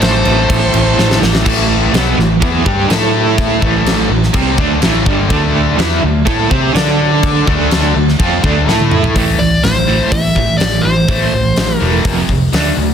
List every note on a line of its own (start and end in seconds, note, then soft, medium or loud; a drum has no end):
0.00 0.23 A1 medium
0.00 0.23 A2 medium
0.00 0.24 E3 loud
0.00 0.24 A3 loud
0.00 1.45 C4 loud
0.00 1.45 E4 medium
0.00 1.18 A4 medium
0.00 1.17 C5 medium
0.00 snare loud
0.00 crash medium
0.25 0.47 A1 loud
0.25 0.96 A2 medium
0.25 0.97 E3 medium
0.25 0.96 A3 medium
0.25 crash medium
0.50 0.71 A1 loud
0.50 kick loud
0.50 crash loud
0.74 0.96 A1 medium
0.74 crash medium
0.97 1.20 A1 medium
0.97 1.43 A2 medium
0.97 1.44 E3 medium
0.97 1.44 A3 loud
0.97 snare medium
1.11 snare medium
1.22 1.44 A1 medium
1.22 snare medium
1.35 snare medium
1.44 1.91 A1 medium
1.44 1.92 A2 medium
1.44 1.93 E3 loud
1.44 1.93 A3 loud
1.44 kick loud
1.44 crash loud
1.44 crash medium
1.93 2.16 B1 medium
1.93 2.17 B2 medium
1.93 2.17 F#3 loud
1.93 2.17 B3 loud
1.93 snare loud
1.93 crash medium
2.17 2.40 A1 medium
2.17 2.37 A2 medium
2.17 2.38 E3 medium
2.17 snare soft
2.40 2.64 E2 loud
2.40 2.64 E3 medium
2.40 2.64 B3 loud
2.40 2.64 E4 loud
2.40 kick loud
2.40 crash medium
2.64 2.88 G2 loud
2.64 2.88 G3 medium
2.64 2.89 D4 medium
2.64 2.89 G4 loud
2.64 kick loud
2.89 3.58 A2 medium
2.89 3.61 A3 loud
2.89 3.61 E4 loud
2.89 3.62 A4 loud
2.89 snare loud
2.89 crash medium
3.38 kick loud
3.38 crash medium
3.61 4.07 A1 medium
3.61 4.09 A2 medium
3.61 4.09 E3 medium
3.61 4.10 A3 loud
3.61 kick loud
3.86 snare loud
3.86 crash medium
4.09 4.32 A1 medium
4.09 4.30 A2 medium
4.09 4.30 E3 medium
4.23 snare soft
4.33 4.56 C2 medium
4.33 4.56 C3 loud
4.33 4.57 G3 medium
4.33 4.57 C4 loud
4.33 kick loud
4.33 crash medium
4.57 4.81 D2 loud
4.57 4.81 D3 loud
4.57 4.81 A3 loud
4.57 4.81 D4 loud
4.57 kick loud
4.81 5.05 A1 medium
4.81 5.05 A2 loud
4.81 5.06 E3 loud
4.81 5.06 A3 loud
4.81 snare loud
4.81 crash medium
5.05 5.29 G1 medium
5.05 5.29 G2 loud
5.05 5.27 D3 loud
5.05 5.28 G3 loud
5.05 kick loud
5.28 5.75 D2 loud
5.28 5.76 D3 medium
5.28 5.77 A3 medium
5.28 5.77 D4 medium
5.28 kick loud
5.28 crash medium
5.77 6.01 E2 medium
5.77 6.01 E3 medium
5.77 6.02 B3 loud
5.77 6.02 E4 loud
5.77 snare loud
5.77 crash medium
6.02 6.25 D2 medium
6.02 6.21 D3 medium
6.02 6.21 A3 medium
6.26 6.49 A2 loud
6.26 6.49 A3 medium
6.26 6.50 E4 loud
6.26 6.50 A4 loud
6.26 kick loud
6.26 crash medium
6.50 6.73 C3 loud
6.50 6.73 C4 medium
6.50 6.74 G4 medium
6.50 6.74 C5 loud
6.50 kick loud
6.73 7.43 D3 loud
6.73 7.45 D4 loud
6.73 7.46 A4 loud
6.73 7.46 D5 loud
6.73 snare loud
6.73 crash medium
7.23 kick loud
7.23 crash medium
7.47 7.92 D2 medium
7.47 7.94 D3 medium
7.47 7.94 A3 medium
7.47 7.95 D4 loud
7.47 kick loud
7.71 snare loud
7.71 crash medium
7.95 8.18 D2 medium
7.95 8.14 D3 medium
7.95 8.14 A3 medium
8.09 snare soft
8.19 8.41 F2 loud
8.19 8.43 F3 medium
8.19 8.43 C4 loud
8.19 8.44 F4 loud
8.19 kick loud
8.19 crash medium
8.43 8.66 D2 medium
8.43 8.66 D3 medium
8.43 8.66 A3 medium
8.43 8.67 D4 loud
8.43 kick loud
8.68 9.12 A2 medium
8.68 9.15 A3 medium
8.68 9.16 E4 loud
8.68 9.16 A4 loud
8.68 snare medium
8.80 high tom medium
8.91 mid tom medium
9.04 floor tom medium
9.15 9.33 A1 medium
9.15 9.38 A2 medium
9.15 9.38 E3 medium
9.15 9.38 A3 loud
9.15 kick loud
9.15 open hi-hat medium
9.39 9.58 A1 medium
9.39 9.61 A2 medium
9.39 9.61 E3 medium
9.39 9.62 D5 loud
9.63 10.00 A1 medium
9.63 9.85 A2 medium
9.63 9.85 E3 medium
9.63 10.13 C5 medium
9.63 snare loud
9.63 open hi-hat medium
9.88 10.10 A2 medium
9.88 10.11 E3 medium
9.88 10.11 A3 medium
10.12 10.48 A1 medium
10.12 10.33 A2 medium
10.12 10.34 E3 medium
10.12 10.57 E5 loud
10.12 kick loud
10.12 open hi-hat medium
10.36 10.58 A2 medium
10.36 10.58 E3 medium
10.36 kick medium
10.58 10.78 A1 medium
10.58 10.82 A2 medium
10.58 10.84 D5 medium
10.58 snare loud
10.58 open hi-hat medium
10.62 10.83 E3 medium
10.82 11.02 A1 medium
10.82 11.77 C5 medium
10.86 11.07 A2 medium
10.86 11.07 E3 medium
11.09 11.26 A1 medium
11.09 11.31 A2 medium
11.09 11.32 E3 medium
11.09 11.32 A3 medium
11.09 kick loud
11.09 open hi-hat medium
11.33 11.51 A1 medium
11.33 11.54 A2 medium
11.33 11.55 E3 medium
11.56 11.75 A1 medium
11.56 11.79 A2 medium
11.56 11.79 E3 medium
11.56 snare loud
11.56 open hi-hat medium
11.77 12.24 A#4 medium
11.81 11.99 E1 medium
11.81 12.03 A2 medium
11.81 12.04 E3 medium
11.81 12.04 A3 loud
12.04 12.23 F1 medium
12.04 12.27 F2 medium
12.04 12.28 C3 medium
12.04 12.28 F3 medium
12.04 kick loud
12.04 open hi-hat medium
12.29 12.47 F1 medium
12.29 12.51 F2 medium
12.29 12.51 C3 medium
12.29 kick medium
12.52 12.71 D2 medium
12.52 12.75 D3 medium
12.52 12.75 A3 loud
12.52 12.76 D4 loud
12.52 snare loud
12.52 open hi-hat medium
12.77 12.94 D2 medium
12.77 12.94 D3 medium
12.77 12.94 A3 medium